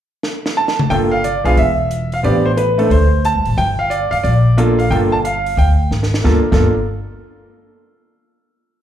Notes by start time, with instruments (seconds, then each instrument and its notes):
0.23 snare
0.46 snare
0.57 grand piano A5
0.68 snare
0.79 mid tom
0.90 upright bass G1, grand piano A#3 D4 F4 A4 G5, open hi-hat
1.11 grand piano F5
1.24 grand piano D5, closed hi-hat
1.44 upright bass B1, grand piano B3 D4 F4 G#4 F5, open hi-hat
1.57 upright bass E1, grand piano E5, open hi-hat
1.91 closed hi-hat
2.12 grand piano F5, open hi-hat
2.23 upright bass A1, grand piano B3 C4 D4 G4 D5, open hi-hat
2.46 grand piano C5
2.57 grand piano B4, closed hi-hat
2.78 grand piano A3 C4 D4 A4, open hi-hat
2.90 upright bass D2, grand piano C5, open hi-hat
3.25 grand piano A5, closed hi-hat
3.35 upright bass C2
3.45 upright bass A1, open hi-hat
3.57 upright bass G1, grand piano G5, open hi-hat
3.79 grand piano F5
3.90 grand piano D5, closed hi-hat
4.11 grand piano F5, muted upright bass stroke, open hi-hat
4.23 upright bass A#1, grand piano D5, open hi-hat
4.57 grand piano A#3 D4 F4 A4, closed hi-hat
4.79 grand piano F5, open hi-hat
4.90 upright bass G1, grand piano A#3 D4 F4 A4 G5, open hi-hat
5.12 grand piano A5
5.25 grand piano F5, closed hi-hat
5.46 open hi-hat
5.57 upright bass D2, grand piano G5, open hi-hat
5.91 upright bass G#1, snare
6.03 snare
6.14 snare
6.24 upright bass G1, grand piano A#3 D4 F4 A4, kick, snare
6.52 upright bass G1, grand piano A#3 D4 F4 A4, kick, snare, crash